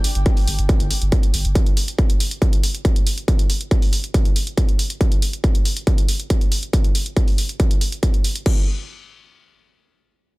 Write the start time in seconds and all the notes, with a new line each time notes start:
Already playing: D4 G4 G5
0.04 open hi-hat
0.15 G1, closed hi-hat
0.26 kick, closed hi-hat
0.37 open hi-hat
0.47 G1, open hi-hat
0.59 G1, closed hi-hat
0.69 kick, closed hi-hat
0.80 G1, closed hi-hat
0.91 open hi-hat
1.02 G1, closed hi-hat
1.12 kick, closed hi-hat
1.23 closed hi-hat
1.34 G1, open hi-hat
1.45 G1, closed hi-hat
1.55 kick, closed hi-hat
1.66 closed hi-hat
1.77 open hi-hat
1.88 closed hi-hat
1.99 kick, closed hi-hat
2.10 closed hi-hat
2.20 open hi-hat
2.31 closed hi-hat
2.42 kick, closed hi-hat
2.53 closed hi-hat
2.63 open hi-hat
2.75 closed hi-hat
2.85 kick, closed hi-hat
2.96 closed hi-hat
3.07 open hi-hat
3.18 closed hi-hat
3.28 kick, closed hi-hat
3.39 closed hi-hat
3.50 open hi-hat
3.61 closed hi-hat
3.71 kick, closed hi-hat
3.82 open hi-hat
3.93 open hi-hat
4.04 closed hi-hat
4.14 kick, closed hi-hat
4.25 closed hi-hat
4.36 open hi-hat
4.47 closed hi-hat
4.58 kick, closed hi-hat
4.69 closed hi-hat
4.79 open hi-hat
4.90 closed hi-hat
5.01 kick, closed hi-hat
5.12 closed hi-hat
5.22 open hi-hat
5.33 closed hi-hat
5.44 kick, closed hi-hat
5.55 closed hi-hat
5.65 open hi-hat
5.77 closed hi-hat
5.87 kick, closed hi-hat
5.98 closed hi-hat
6.08 open hi-hat
6.20 closed hi-hat
6.30 kick, closed hi-hat
6.41 closed hi-hat
6.52 open hi-hat
6.63 closed hi-hat
6.73 kick, closed hi-hat
6.84 closed hi-hat
6.95 open hi-hat
7.06 closed hi-hat
7.17 kick, closed hi-hat
7.28 open hi-hat
7.38 open hi-hat
7.49 closed hi-hat
7.60 kick, closed hi-hat
7.71 closed hi-hat
7.81 open hi-hat
7.92 closed hi-hat
8.03 kick, closed hi-hat
8.14 closed hi-hat
8.24 open hi-hat
8.36 closed hi-hat
8.46 kick, crash